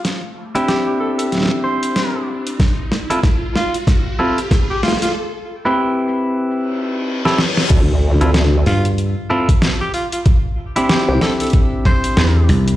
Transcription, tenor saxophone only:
X:1
M:4/4
L:1/16
Q:"Swing 16ths" 1/4=94
K:C
V:1 name="Tenor saxophone"
z4 G G A A z2 c4 z2 | z6 F z6 G F F | z16 | z6 F z6 G F F |
z4 G G A A z2 c4 z2 |]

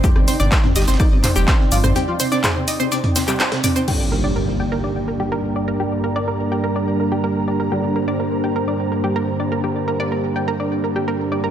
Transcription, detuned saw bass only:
X:1
M:4/4
L:1/16
Q:1/4=125
K:Gm
V:1 name="Detuned saw bass" clef=bass
z G,,, z G,,, z2 G,,, G,,, z G,,, z F,,, z2 G,,, G,,, | z16 | z16 | z16 |
z16 | z16 |]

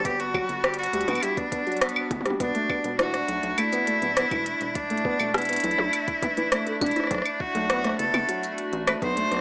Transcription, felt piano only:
X:1
M:4/4
L:1/16
Q:1/4=102
K:Em
V:1 name="Felt piano"
B, B, F, z3 G, B, G, B, B, F, z3 G, | B, A, B, B, E, z3 A, B, A, B, B, E, z2 | z A, B, A, B, B, E, z3 E, E, A, A D E | z3 A, B, A, B, B, F, z3 A, B, A, B, |]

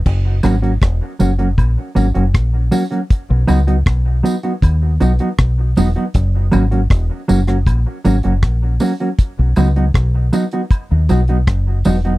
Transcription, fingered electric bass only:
X:1
M:4/4
L:1/16
Q:1/4=79
K:F#mix
V:1 name="Fingered electric bass" clef=bass
F,,,2 G,,,2 E,,, z F,,,2 A,,, z G,,, F,,, A,,,2 z2 | z B,,, C,,2 B,,,2 z2 D,,2 B,,, z B,,,2 E,,, z | F,,,2 G,,,2 E,,, z F,,,2 A,,, z G,,, F,,, A,,,2 z2 | z B,,, C,,2 B,,,2 z3 D,, B,,,2 F,,,2 E,,,2 |]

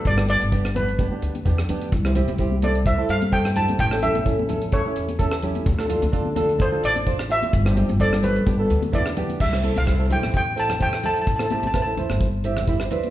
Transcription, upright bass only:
X:1
M:4/4
L:1/16
Q:"Swing 16ths" 1/4=128
K:C
V:1 name="Upright bass" clef=bass
G,,,3 G,,,6- G,,, D,,2 E,,2 D,,2 | C,,3 C,,6- C,, G,,6 | A,,,3 A,,,6- A,,, E,,6 | D,,3 D,,6- D,, A,,,6 |
G,,,3 G,,,4- G,,, G,,,2 D,,6 | C,,3 C,,4 A,,,8 z | A,,,3 A,,,4 G,,,8 z |]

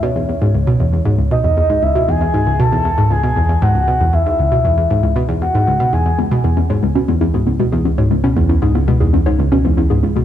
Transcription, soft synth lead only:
X:1
M:4/4
L:1/8
Q:1/4=117
K:C#m
V:1 name="Soft synth lead"
c4 z d2 e | g2 a2 g2 f2 | e4 z f2 g | z8 |
z8 |]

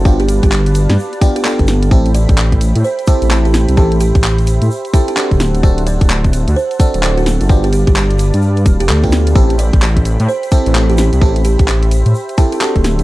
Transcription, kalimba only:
X:1
M:4/4
L:1/16
Q:"Swing 16ths" 1/4=129
K:Am
V:1 name="Kalimba"
z G G G3 z4 z G A4 | z2 d z4 z c z4 G G z | G2 G z6 z G G z4 | z2 d z4 z c z4 ^F F z |
z G G G3 z4 z G A4 | z2 d z4 z c z4 G G z | G2 G z6 z G G z4 |]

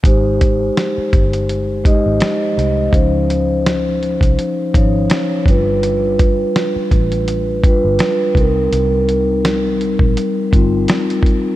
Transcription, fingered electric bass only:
X:1
M:4/4
L:1/16
Q:"Swing 16ths" 1/4=83
K:Ab
V:1 name="Fingered electric bass" clef=bass
A,,,4 z2 G,,,4- G,,, A,,, z2 C,,2 | D,,6- D,, C,, z2 A,,,2 z2 G,,,2- | G,,,4 z2 =A,,,4- A,,, G,,, z2 C,,2 | C,,6- C,, B,,, z2 G,,,2 z4 |]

